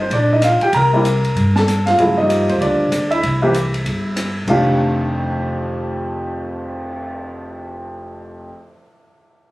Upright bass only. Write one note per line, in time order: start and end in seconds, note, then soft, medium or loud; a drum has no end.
0.10 0.58 A#1 medium
0.61 muted upright bass stroke soft
0.73 1.32 C2 medium
1.36 1.95 G2 medium
1.98 2.45 G2 medium
2.49 2.60 F2 medium
2.61 2.90 D2 medium
2.91 3.21 D2 medium
3.23 3.82 C2 medium
3.85 4.45 G1 medium
4.48 8.43 F1 medium